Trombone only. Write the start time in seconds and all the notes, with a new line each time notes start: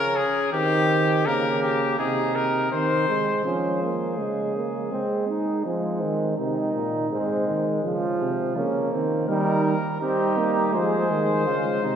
3.45 C#4
3.82 A#3
4.19 G#3
4.55 A#3
4.91 C4
5.28 D#4
5.65 G#3
6.38 D#3
7.12 G#3
7.84 F3
8.57 A#3
9.29 G3
10.01 C4
10.38 A#3
10.74 G#3
11.46 G#3